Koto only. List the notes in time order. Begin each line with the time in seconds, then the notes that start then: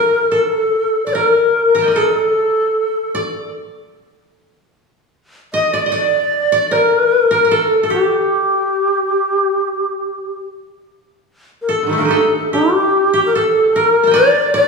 Already playing: D4 D#4 G4 A#4
0.31 A4
1.07 D5
1.15 A#4
1.75 A#4 A5 A#5
1.82 D#5 G5
1.88 D5
1.92 A#4
1.96 A4
3.15 D5
5.54 D#5
5.73 D5
5.86 D#5
5.92 D5
6.52 D5
6.71 A#4
7.31 A#4
7.45 A#4
7.51 A4
7.83 A4
7.90 G4
11.69 A4
11.83 D3 D#3
11.89 G3 A3
11.98 A#3 D4
12.05 D#4 G4
12.11 A4
12.53 G4
13.13 G4
13.35 A4
13.76 A#4
14.03 G5 A5 A#5
14.11 D5 D#5
14.54 D5